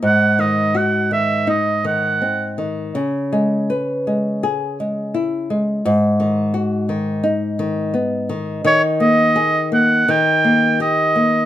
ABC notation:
X:1
M:4/4
L:1/8
Q:1/4=84
K:G#m
V:1 name="Oboe"
f d f e d f2 z | z8 | z8 | c d2 f =g2 d2 |]
V:2 name="Nylon-string guitar" clef=bass
G,, D, F D, D D, ^B, D, | C, G, B G, G G, E G, | G,, D, F D, D D, B, D, | D, A, G A, D, A, =G A, |]